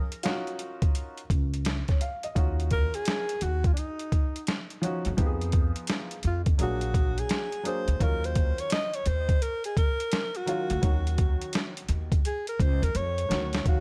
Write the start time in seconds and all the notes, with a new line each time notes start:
Already playing: A#4
0.12 closed hi-hat
0.23 C#4 D#4 F4 F#4, snare, closed hi-hat
0.47 closed hi-hat
0.59 closed hi-hat
0.82 kick, closed hi-hat
0.95 closed hi-hat
1.17 closed hi-hat
1.30 C#2, kick, closed hi-hat
1.54 closed hi-hat
1.65 snare, closed hi-hat
1.88 C#5, kick, snare, closed hi-hat
2.01 F5, closed hi-hat
2.23 D#5, closed hi-hat
2.35 D#2 C#4 D#4 F4 F#4, kick, closed hi-hat
2.60 closed hi-hat
2.71 A#4, kick, closed hi-hat
2.94 G#4, closed hi-hat
3.05 snare, closed hi-hat
3.29 closed hi-hat
3.41 D#2 F#4, closed hi-hat
3.64 F4, kick, closed hi-hat
3.74 D4, closed hi-hat
3.79 D#4
3.99 closed hi-hat
4.12 kick, closed hi-hat
4.36 closed hi-hat
4.47 snare, closed hi-hat
4.70 closed hi-hat
4.82 F3 C#4 D#4 F#4, closed hi-hat
5.05 F2, closed hi-hat
5.17 F2 F3 B3 D#4 G4, kick, closed hi-hat
5.26 G#4
5.41 closed hi-hat
5.52 kick, closed hi-hat
5.76 closed hi-hat
5.87 snare, closed hi-hat
6.11 closed hi-hat
6.23 F2, closed hi-hat
6.27 F4
6.46 kick, closed hi-hat
6.58 A#1 F#3 A#3 D4 G#4, closed hi-hat
6.63 F#4
6.81 closed hi-hat
6.94 kick, closed hi-hat
7.18 G#4, closed hi-hat
7.29 snare, closed hi-hat
7.52 closed hi-hat
7.63 F#3 A#3 D4 G#4 C5, closed hi-hat
7.88 D2, closed hi-hat
7.99 D#2 D#3 F#3 C#4 F4 A#4, kick, closed hi-hat
8.24 C5, closed hi-hat
8.35 kick, closed hi-hat
8.58 C#5, closed hi-hat
8.70 D#5, snare, closed hi-hat
8.94 C#5, closed hi-hat
9.06 D#2 C5, closed hi-hat
9.29 kick, closed hi-hat
9.42 A#4, closed hi-hat
9.64 G#4, closed hi-hat
9.77 A#4, kick, closed hi-hat
10.00 closed hi-hat
10.12 snare, closed hi-hat
10.35 F#4, closed hi-hat
10.46 D#3 F#3 C#4 F4, closed hi-hat
10.70 D2, closed hi-hat
10.81 D#2 D#3 F#3 C#4 F#4, kick, closed hi-hat
11.07 closed hi-hat
11.18 kick, closed hi-hat
11.41 closed hi-hat
11.53 snare, closed hi-hat
11.77 closed hi-hat
11.89 D#2, closed hi-hat
12.12 kick, closed hi-hat
12.25 G#4, closed hi-hat
12.47 A#4, closed hi-hat
12.60 C#2 C5, kick, closed hi-hat
12.82 D#2 A#4, closed hi-hat
12.95 F2 C#5, closed hi-hat
13.18 closed hi-hat
13.29 D2 D#3 F#3 C#4 F#4, snare, closed hi-hat
13.53 snare, closed hi-hat
13.64 D#2 D#3 F#3 C#4 F5, kick, closed hi-hat
13.68 F#4